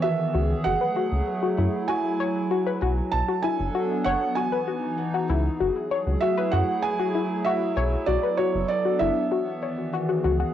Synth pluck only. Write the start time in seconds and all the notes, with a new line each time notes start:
0.04 F#4
0.35 F#4
0.66 F#4
0.81 B4
0.96 F#4
1.43 F#4
1.58 E4
1.89 F#4
2.20 C#5
2.51 F#4
2.67 B4
2.82 F#4
3.28 F#4
3.44 E4
3.75 F#4
4.06 C#5
4.37 F#4
4.52 B4
4.68 F#4
5.14 F#4
5.29 E4
5.60 F#4
5.91 C#5
6.22 F#4
6.38 B4
6.53 F#4
7.00 F#4
7.15 E4
7.46 F#4
7.77 C#5
8.08 F#4
8.23 B4
8.39 F#4
8.85 F#4
9.01 E4
9.32 F#4
9.62 C#5
9.93 F#4
10.09 F#4
10.24 F#4
10.40 F#5